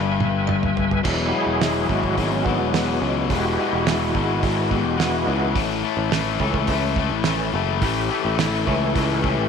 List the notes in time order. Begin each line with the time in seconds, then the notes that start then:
Already playing: G1 G2 B4 E5 G#5
0.20 high tom
0.47 mid tom, cowbell
0.63 mid tom
0.77 floor tom
0.91 floor tom
1.03 E1 E2 B2 E3 F#3 G#3 E4, kick, crash
1.29 E2 B2 G4
1.33 E3 G#4
1.46 E1
1.61 E2 B2 E3, snare, open hi-hat
1.89 G#1 E2 B2 E3 F#4, kick
2.03 kick
2.18 G#1 E2 B2 E3 E4, kick, open hi-hat
2.32 C#4
2.45 E2 B2 E3 B3, kick
2.60 E1
2.74 E2 B2 E3, snare, open hi-hat
3.02 C#2 E2 B2 E3
3.30 E1 E2 B2 E3 G#3 E4 F#4 G4, kick, open hi-hat
3.59 E2 B2 E3
3.73 E1
3.85 E2 B2 E3, snare, open hi-hat
3.90 E4
4.14 G#1 E2 B2 E3, kick
4.43 G#1 E2 B2 E3, kick, open hi-hat
4.71 E2 B2 E3 G4, kick
4.84 E1
4.97 E2 B2 E3 B3 E4, snare, open hi-hat
5.27 C#2 E2 B2 E3
5.54 A1 A2 E3 A3, kick, open hi-hat
5.84 A2 E3 A3
5.97 A1
6.11 A2 E3 A3, snare, open hi-hat
6.40 C#2 A2 E3 A3 C#4, kick
6.54 kick
6.67 C#2 A2 E3 A3, kick, open hi-hat
6.96 A2 E3 A3, kick
7.12 A1
7.24 A2 E3 A3 C#4, snare, open hi-hat
7.28 A3
7.54 F#1 A2 E3 A3
7.82 A1 A2 E3 A3 G4, kick, open hi-hat
8.09 A2 E3 A3
8.25 A1
8.37 A2 E3 A3 E4, snare, open hi-hat
8.63 A2 E3 A3 C#4, kick
8.68 C#2
8.95 C#2 A2 E3 A3, kick, open hi-hat
9.20 A2 E3 A3 G4, kick
9.38 A1